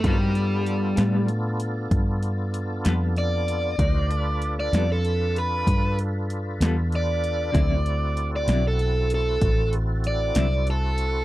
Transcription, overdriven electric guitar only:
X:1
M:12/8
L:1/16
Q:3/8=64
K:G
V:1 name="Overdriven electric guitar"
G,8 z12 d4- | d4- d d2 A3 B4 z6 d4- | d4- d d2 A3 A4 z2 d4 A4 |]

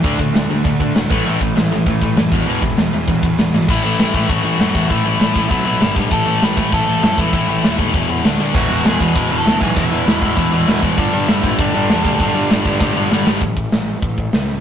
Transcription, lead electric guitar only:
X:1
M:4/4
L:1/16
Q:1/4=197
K:Emix
V:1 name="Lead electric guitar"
z16 | z16 | z16 | [Ee]8 [Ff]8 |
[Ee]8 [Ee]6 z2 | [Aa]4 [Bb]4 [Aa]4 [Aa]2 [Ee]2- | [Ee]6 z8 z2 | [Ff]4 [Gg]4 [Bb]3 [Aa]3 [Gg]2 |
[Ee]12- [Ee]2 z2 | [Dd]4 [Ee]4 [Dd]8- | [Dd]12 z4 | z16 |]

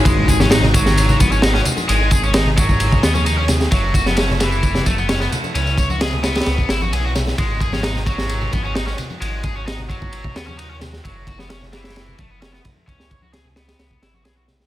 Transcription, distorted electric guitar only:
X:1
M:4/4
L:1/16
Q:1/4=131
K:G#phr
V:1 name="Distorted electric guitar"
G,2 G C D z F,4 B, C D C z2 | G,2 G C D z F,4 B, C D C z2 | F,2 F B, C z E,4 A, B, C B, z2 | C2 c F G z B,4 E F G F z2 |
G,2 G C D z F,4 B, C D C z2 | G,2 G C D z F,4 B, C D C z2 | F,2 F B, C z E,4 A, B, C B, z2 | C2 c F G z B,4 E F G F z2 |]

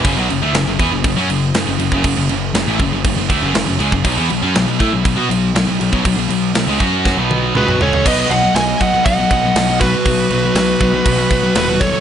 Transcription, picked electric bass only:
X:1
M:4/4
L:1/16
Q:1/4=120
K:Bmix
V:1 name="Picked electric bass" clef=bass
F,,, B,,, F,,, =D,, F,,, F,,, E,, F,,, F,,, F,, F,,,2 F,,, F,,, F,,, F,,, | F,,, F,,, F,,,2 F,,, A,,, F,,, F,,, F,,, F,,, =D,, F,,, F,,, F,,, C,, F,,, | B,,, E,, B,,, F,, B,,, B,,, A,, B,,, B,,, B,, B,,,2 B,,, B,,, B,,, B,,, | B,,, B,,, B,,,2 B,,, C,, F,,3 B,,,3 C,, B,,, C,,2 |
B,,,2 B,,,2 B,,,2 B,,,2 B,,,2 B,,,2 B,,,4 | B,,,2 B,,,2 B,,,2 B,,,2 B,,,2 B,,,2 D,,,4 |]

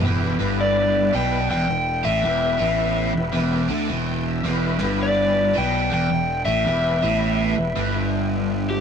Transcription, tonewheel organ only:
X:1
M:4/4
L:1/8
Q:"Swing" 1/4=109
K:Em
V:1 name="Tonewheel organ"
[B,EGB] [B,EGB]4 z3 | [B,EGB] [B,EGB]4 a g e | [B,EGB] [B,EGB]4 z3 | [B,EGB] [B,EGB]4 z3 |]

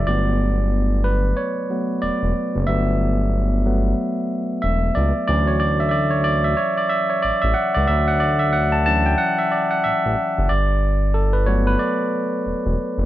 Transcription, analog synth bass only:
X:1
M:4/4
L:1/16
Q:"Swing 16ths" 1/4=92
K:Glyd
V:1 name="Analog synth bass" clef=bass
G,,,8 z4 E,,, E,,, z F,,, | G,,,8 z4 E,,,2 C,, z | D,,8 z4 A,,, A,,, z C,, | D,,8 z4 A,,, A,,, z F,,, |
G,,,8 z4 E,,, E,,, z F,,, |]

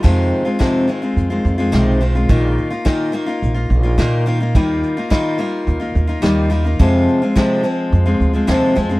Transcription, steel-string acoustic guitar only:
X:1
M:4/4
L:1/16
Q:1/4=107
K:Fm
V:1 name="Steel-string acoustic guitar"
[F,,C,E,A,CF]3 [E,A,CF] [F,,C,E,A,CF]2 [E,A,CF] [E,A,CF]2 [E,A,CF]2 [E,A,CF] [F,,C,E,A,CF]2 [E,A,CF] [E,A,CF] | [B,,E,B,EF]3 [B,EF] [B,,E,B,EF]2 [E,B,EF] [B,EF]2 [B,EF]2 [B,EF] [B,,E,B,EF]2 [E,B,EF] [B,EF] | [E,G,B,EF]3 [B,EF] [E,G,B,EF]2 [G,B,EF]3 [B,EF]2 [B,EF] [E,G,B,EF]2 [G,B,EF] [B,EF] | [F,,C,F,A,CF]3 [F,A,CF] [F,,C,F,A,CF]2 [F,A,CF]3 [F,A,CF]2 [F,A,CF] [F,,C,F,A,CF]2 [F,A,CF] [F,A,CF] |]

